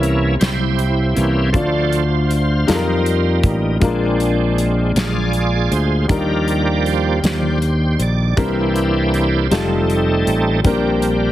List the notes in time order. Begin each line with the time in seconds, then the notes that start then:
Already playing: C2 C3 E3 A#3 C#4 E4 C5
0.03 closed hi-hat
0.40 C2 E4 G4 C5, snare, closed hi-hat
0.79 closed hi-hat
1.15 C2 E3 A#3 C#4, closed hi-hat
1.52 D3 F3 A3 D4 F4 C5 D5, kick, closed hi-hat
1.93 closed hi-hat
2.31 closed hi-hat
2.67 F2 G3 A#3 D#4 F4 A4, snare, closed hi-hat
2.75 A#4
3.06 closed hi-hat
3.43 A1, kick, closed hi-hat
3.80 A#1 A#2 G#3 C4 D4 F4 A#4, kick, closed hi-hat
4.20 closed hi-hat
4.58 closed hi-hat
4.95 A#1 F4 G#4 D5, snare, closed hi-hat
5.33 closed hi-hat
5.71 D2 C5, closed hi-hat
6.08 D#2 D#3 F3 G3 A#3 D4 D#4 G4 A#4 D5, kick, closed hi-hat
6.48 closed hi-hat
6.85 G4 C5, closed hi-hat
7.23 D#2 F3 G3 D5, snare, closed hi-hat
7.62 closed hi-hat
7.99 A#1 D5, closed hi-hat
8.37 C2 C3 E3 G3 A#3 C4 D4 E4 G4 A#4 C5, kick, closed hi-hat
8.44 E4
8.76 closed hi-hat
9.14 closed hi-hat
9.50 F1 G3 A3 C4 D#4 F4 A4, snare, closed hi-hat
9.90 closed hi-hat
10.27 A1, closed hi-hat
10.63 A#1 A#2 G3 C4 D4 G4 A#4, kick, closed hi-hat
11.02 closed hi-hat